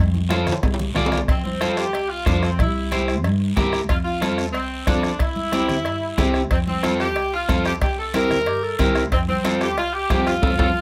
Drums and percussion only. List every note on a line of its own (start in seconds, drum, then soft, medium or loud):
0.14 high conga medium
0.30 bombo rim medium
0.30 high conga medium
0.30 high timbale medium
0.30 short guiro medium
0.47 bombo rim medium
0.47 low conga loud
0.47 short guiro medium
0.52 high timbale medium
0.63 bombo low medium
0.63 bombo rim medium
0.63 cowbell medium
0.63 low timbale medium
0.63 long guiro medium
0.74 high timbale medium
0.79 low conga medium
0.96 bombo rim medium
0.96 low conga loud
0.96 short guiro medium
1.06 low timbale loud
1.12 bombo rim medium
1.12 low conga medium
1.12 short guiro medium
1.18 low timbale medium
1.28 bombo low medium
1.28 bombo rim medium
1.28 cowbell medium
1.28 long guiro medium
1.45 high conga medium
1.61 bombo rim medium
1.61 cowbell medium
1.61 high conga medium
1.61 short guiro medium
1.77 bombo rim medium
1.77 short guiro medium
1.93 bombo rim medium
1.93 cowbell medium
1.93 long guiro medium
2.26 bombo low medium
2.26 bombo rim medium
2.26 cowbell medium
2.26 high conga medium
2.26 low timbale medium
2.26 short guiro medium
2.43 bombo rim medium
2.43 short guiro medium
2.59 bombo low medium
2.59 bombo rim medium
2.59 cowbell medium
2.59 long guiro medium
2.92 bombo rim medium
2.92 cowbell medium
2.92 high conga medium
2.92 short guiro medium
3.08 bombo rim medium
3.08 short guiro medium
3.24 bombo rim medium
3.24 cowbell medium
3.24 long guiro medium
3.57 bombo low medium
3.57 bombo rim medium
3.57 cowbell medium
3.57 high conga medium
3.57 low conga medium
3.57 low timbale medium
3.57 short guiro medium
3.73 bombo rim medium
3.73 short guiro medium
3.89 bombo low medium
3.89 bombo rim medium
3.89 cowbell medium
3.89 long guiro medium
4.22 bombo rim medium
4.22 cowbell medium
4.22 high conga medium
4.22 short guiro medium
4.38 bombo rim medium
4.38 short guiro medium
4.54 bombo rim medium
4.54 cowbell medium
4.54 long guiro medium
4.87 bombo low medium
4.87 bombo rim medium
4.87 cowbell medium
4.87 high conga medium
4.87 low timbale medium
4.87 short guiro medium
5.03 bombo rim medium
5.03 short guiro medium
5.19 bombo low medium
5.19 bombo rim medium
5.19 cowbell medium
5.19 long guiro medium
5.36 high conga medium
5.52 bombo rim medium
5.52 cowbell medium
5.52 high conga medium
5.52 short guiro medium
5.69 bombo rim medium
5.69 low conga medium
5.69 short guiro medium
5.85 bombo rim medium
5.85 cowbell medium
5.85 long guiro medium
6.18 bombo low medium
6.18 bombo rim medium
6.18 cowbell medium
6.18 high conga medium
6.18 low conga medium
6.18 low timbale medium
6.18 short guiro medium
6.34 bombo rim medium
6.34 short guiro medium
6.51 bombo low medium
6.51 bombo rim medium
6.51 cowbell medium
6.51 long guiro medium
6.67 high conga medium
6.83 bombo rim medium
6.83 cowbell medium
6.83 high conga medium
6.83 short guiro medium
7.00 bombo rim medium
7.00 short guiro medium
7.16 bombo rim medium
7.16 cowbell medium
7.16 long guiro medium
7.49 bombo low medium
7.49 bombo rim medium
7.49 cowbell medium
7.49 high conga medium
7.49 short guiro medium
7.65 bombo rim medium
7.65 short guiro medium
7.82 bombo low medium
7.82 bombo rim medium
7.82 cowbell medium
7.82 long guiro medium
8.14 bombo rim medium
8.14 cowbell medium
8.14 high conga medium
8.14 short guiro medium
8.31 bombo rim medium
8.31 low conga medium
8.31 short guiro medium
8.46 bombo rim medium
8.46 cowbell medium
8.46 long guiro medium
8.79 bombo low medium
8.79 bombo rim medium
8.79 cowbell medium
8.79 high conga medium
8.79 low conga medium
8.79 short guiro medium
8.95 bombo rim medium
8.95 short guiro medium
9.12 bombo low medium
9.12 bombo rim medium
9.12 cowbell medium
9.12 long guiro medium
9.28 high conga medium
9.45 bombo rim medium
9.45 cowbell medium
9.45 high conga medium
9.45 short guiro medium
9.61 bombo rim medium
9.61 short guiro medium
9.77 bombo rim medium
9.77 cowbell medium
9.77 long guiro medium
10.10 bombo low medium
10.10 bombo rim medium
10.10 cowbell medium
10.10 high conga medium
10.10 low timbale medium
10.10 short guiro medium
10.27 bombo rim medium
10.27 short guiro medium
10.43 bombo low loud
10.43 high conga loud
10.43 high timbale medium
10.43 long guiro loud
10.59 bombo low medium
10.59 high conga medium
10.59 high timbale loud